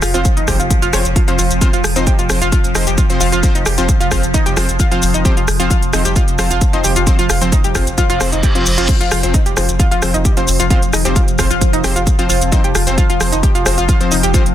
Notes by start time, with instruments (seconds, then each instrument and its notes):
Already playing: synth drone F3
0.02 sub bass F1, synth arpeggio sound F4, cross-stick, open hi-hat, shaker
0.14 sub bass F1, supersaw synth F3 C4 C5, synth arpeggio sound F4, closed hi-hat, shaker
0.25 kick, closed hi-hat, shaker
0.37 sub bass F1, synth arpeggio sound D#4, closed hi-hat, shaker
0.48 sub bass F1, supersaw synth F3 C4 C5, synth arpeggio sound G4, kick, cross-stick, open hi-hat, shaker
0.60 sub bass F1, synth arpeggio sound F4, closed hi-hat, shaker
0.70 kick, closed hi-hat, shaker
0.82 sub bass F1, synth arpeggio sound F4, closed hi-hat, shaker
0.93 sub bass F1, supersaw synth F3 C4 C5, synth arpeggio sound C#5, cross-stick, open hi-hat, shaker
1.05 sub bass F1, closed hi-hat, shaker
1.16 synth arpeggio sound F4, kick, closed hi-hat, shaker
1.28 sub bass F1, supersaw synth F3 C4 C5, synth arpeggio sound F4, closed hi-hat, shaker
1.39 sub bass F1, synth arpeggio sound F4, open hi-hat, shaker
1.51 sub bass F1, closed hi-hat, shaker
1.61 supersaw synth F3 C4 C5, synth arpeggio sound F4, kick, closed hi-hat, shaker
1.73 sub bass F1, synth arpeggio sound F4, closed hi-hat, shaker
1.84 sub bass F1, cross-stick, open hi-hat, shaker
1.96 sub bass F1, supersaw synth F3 C4 C5, synth arpeggio sound D#4, closed hi-hat, shaker
2.07 synth arpeggio sound G4, kick, closed hi-hat, shaker
2.19 sub bass F1, synth arpeggio sound F4, closed hi-hat, shaker
2.30 sub bass F1, supersaw synth F3 C4 C5, cross-stick, open hi-hat, shaker
2.41 sub bass F1, synth arpeggio sound F4, closed hi-hat, shaker
2.52 synth arpeggio sound F4, kick, closed hi-hat, shaker
2.64 sub bass F1, closed hi-hat, shaker
2.75 sub bass F1, supersaw synth F3 C4 C5, synth arpeggio sound D#4, cross-stick, open hi-hat, shaker
2.87 sub bass F1, synth arpeggio sound G4, closed hi-hat, shaker
2.98 synth arpeggio sound F4, kick, closed hi-hat, shaker
3.10 sub bass F1, supersaw synth F3 C4 C5, closed hi-hat, shaker
3.20 sub bass F1, synth arpeggio sound F4, open hi-hat, shaker
3.32 sub bass F1, synth arpeggio sound F4, closed hi-hat, shaker
3.43 supersaw synth F3 C4 C5, kick, closed hi-hat, shaker
3.55 sub bass F1, synth arpeggio sound D#4, closed hi-hat, shaker
3.66 sub bass F1, synth arpeggio sound G4, cross-stick, open hi-hat, shaker
3.78 sub bass F1, supersaw synth F3 C4 C5, synth arpeggio sound F4, closed hi-hat, shaker
3.89 kick, closed hi-hat, shaker
4.00 sub bass F1, synth arpeggio sound F4, closed hi-hat, shaker
4.11 sub bass F1, supersaw synth F3 C4 C5, synth arpeggio sound F4, kick, cross-stick, open hi-hat, shaker
4.23 sub bass F1, closed hi-hat, shaker
4.34 synth arpeggio sound D#4, kick, closed hi-hat, shaker
4.46 sub bass F1, synth arpeggio sound G4, closed hi-hat, shaker
4.57 sub bass F1, supersaw synth F3 C4 C5, synth arpeggio sound F4, cross-stick, open hi-hat, shaker
4.69 sub bass F1, closed hi-hat, shaker
4.80 synth arpeggio sound F4, kick, closed hi-hat, shaker
4.91 sub bass F1, supersaw synth F3 C4 C5, synth arpeggio sound F4, closed hi-hat, shaker
5.02 sub bass F1, open hi-hat, shaker
5.14 sub bass F1, synth arpeggio sound D#4, closed hi-hat, shaker
5.25 supersaw synth F3 C4 C5, synth arpeggio sound G4, kick, closed hi-hat, shaker
5.37 sub bass F1, synth arpeggio sound F4, closed hi-hat, shaker
5.48 sub bass F1, cross-stick, open hi-hat, shaker
5.59 sub bass F1, supersaw synth F3 C4 C5, synth arpeggio sound F4, closed hi-hat, shaker
5.71 synth arpeggio sound F4, kick, closed hi-hat, shaker
5.82 sub bass F1, closed hi-hat, shaker
5.93 sub bass F1, supersaw synth F3 C4 C5, synth arpeggio sound D#4, cross-stick, open hi-hat, shaker
6.05 sub bass F1, synth arpeggio sound G4, closed hi-hat, shaker
6.16 synth arpeggio sound F4, kick, closed hi-hat, shaker
6.28 sub bass F1, closed hi-hat, shaker
6.39 sub bass F1, supersaw synth F3 C4 C5, synth arpeggio sound F4, cross-stick, open hi-hat, shaker
6.51 sub bass F1, synth arpeggio sound F4, closed hi-hat, shaker
6.61 kick, closed hi-hat, shaker
6.73 sub bass F1, supersaw synth F3 C4 C5, synth arpeggio sound D#4, closed hi-hat, shaker
6.84 sub bass F1, synth arpeggio sound G4, open hi-hat, shaker
6.96 sub bass F1, synth arpeggio sound F4, closed hi-hat, shaker
7.07 supersaw synth F3 C4 C5, kick, closed hi-hat, shaker
7.19 sub bass F1, synth arpeggio sound F4, closed hi-hat, shaker
7.30 sub bass F1, synth arpeggio sound F4, cross-stick, open hi-hat, shaker
7.41 sub bass F1, supersaw synth F3 C4 C5, closed hi-hat, shaker
7.52 synth arpeggio sound D#4, kick, closed hi-hat, shaker
7.64 sub bass F1, synth arpeggio sound G4, closed hi-hat, shaker
7.75 sub bass F1, supersaw synth F3 C4 C5, synth arpeggio sound F4, kick, cross-stick, open hi-hat, shaker
7.87 sub bass F1, closed hi-hat, shaker
7.98 synth arpeggio sound F4, kick, closed hi-hat, reverse cymbal, shaker
8.10 sub bass F1, synth arpeggio sound F4, closed hi-hat, shaker
8.20 sub bass F1, supersaw synth F3 C4 C5, cross-stick, open hi-hat, shaker
8.32 sub bass F1, synth arpeggio sound D#4, closed hi-hat, shaker
8.43 synth arpeggio sound G4, kick, closed hi-hat, shaker
8.55 sub bass F1, supersaw synth F3 C4 C5, synth arpeggio sound F4, closed hi-hat, shaker
8.66 sub bass F1, open hi-hat, shaker
8.78 sub bass F1, supersaw synth F3 C4 C5, synth arpeggio sound F4, closed hi-hat, shaker
8.89 synth drone F3, supersaw synth F3 C4 C5, kick, closed hi-hat, crash, shaker
9.01 sub bass F1, synth arpeggio sound F4, closed hi-hat, shaker
9.11 sub bass F1, synth arpeggio sound F4, cross-stick, open hi-hat, shaker
9.23 sub bass F1, supersaw synth F3 C4 C5, closed hi-hat, shaker
9.34 synth arpeggio sound D#4, kick, closed hi-hat, shaker
9.46 sub bass F1, synth arpeggio sound G4, closed hi-hat, shaker
9.57 sub bass F1, supersaw synth F3 C4 C5, synth arpeggio sound F4, cross-stick, open hi-hat, shaker
9.69 sub bass F1, closed hi-hat, shaker
9.80 synth arpeggio sound F4, kick, closed hi-hat, shaker
9.91 sub bass F1, synth arpeggio sound F4, closed hi-hat, shaker
10.02 sub bass F1, supersaw synth F3 C4 C5, cross-stick, open hi-hat, shaker
10.14 sub bass F1, synth arpeggio sound D#4, closed hi-hat, shaker
10.25 synth arpeggio sound G4, kick, closed hi-hat, shaker
10.37 sub bass F1, supersaw synth F3 C4 C5, synth arpeggio sound F4, closed hi-hat, shaker
10.48 sub bass F1, open hi-hat, shaker
10.60 sub bass F1, synth arpeggio sound F4, closed hi-hat, shaker
10.70 supersaw synth F3 C4 C5, synth arpeggio sound F4, kick, closed hi-hat, shaker
10.82 sub bass F1, closed hi-hat, shaker
10.93 sub bass F1, synth arpeggio sound D#4, cross-stick, open hi-hat, shaker
11.05 sub bass F1, supersaw synth F3 C4 C5, synth arpeggio sound G4, closed hi-hat, shaker
11.16 synth arpeggio sound F4, kick, closed hi-hat, shaker
11.28 sub bass F1, closed hi-hat, shaker
11.39 sub bass F1, supersaw synth F3 C4 C5, synth arpeggio sound F4, kick, cross-stick, open hi-hat, shaker
11.51 sub bass F1, synth arpeggio sound F4, closed hi-hat, shaker
11.61 kick, closed hi-hat, shaker
11.73 sub bass F1, synth arpeggio sound D#4, closed hi-hat, shaker
11.84 sub bass F1, supersaw synth F3 C4 C5, synth arpeggio sound G4, cross-stick, open hi-hat, shaker
11.96 sub bass F1, synth arpeggio sound F4, closed hi-hat, shaker
12.07 kick, closed hi-hat, shaker
12.19 sub bass F1, supersaw synth F3 C4 C5, synth arpeggio sound F4, closed hi-hat, shaker
12.29 sub bass F1, synth arpeggio sound F4, open hi-hat, shaker
12.41 sub bass F1, closed hi-hat, shaker
12.52 supersaw synth F3 C4 C5, synth arpeggio sound D#4, kick, closed hi-hat, shaker
12.64 sub bass F1, synth arpeggio sound G4, closed hi-hat, shaker
12.75 sub bass F1, synth arpeggio sound F4, cross-stick, open hi-hat, shaker
12.87 sub bass F1, supersaw synth F3 C4 C5, closed hi-hat, shaker
12.98 synth arpeggio sound F4, kick, closed hi-hat, shaker
13.10 sub bass F1, synth arpeggio sound F4, closed hi-hat, shaker
13.20 sub bass F1, supersaw synth F3 C4 C5, cross-stick, open hi-hat, shaker
13.32 sub bass F1, synth arpeggio sound D#4, closed hi-hat, shaker
13.43 synth arpeggio sound G4, kick, closed hi-hat, shaker
13.55 sub bass F1, synth arpeggio sound F4, closed hi-hat, shaker
13.66 sub bass F1, supersaw synth F3 C4 C5, cross-stick, open hi-hat, shaker
13.78 sub bass F1, synth arpeggio sound F4, closed hi-hat, shaker
13.89 synth arpeggio sound F4, kick, closed hi-hat, shaker
14.01 sub bass F1, supersaw synth F3 C4 C5, closed hi-hat, shaker
14.11 sub bass F1, synth arpeggio sound D#4, open hi-hat, shaker
14.23 sub bass F1, synth arpeggio sound G4, closed hi-hat, shaker
14.34 supersaw synth F3 C4 C5, synth arpeggio sound F4, kick, closed hi-hat, shaker
14.46 sub bass F1, closed hi-hat, shaker